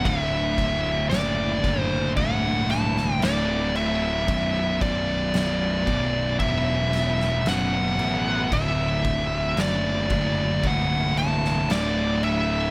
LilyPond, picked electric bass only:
\new Staff \with { instrumentName = "Picked electric bass" } { \clef bass \time 4/4 \key d \mixolydian \tempo 4 = 57 d,,4 fis,,4 c,,4 d,,4 | b,,,4 b,,,4 e,,4 fis,,8 a,,8 | d,,4 fis,,4 c,,4 d,,4 | }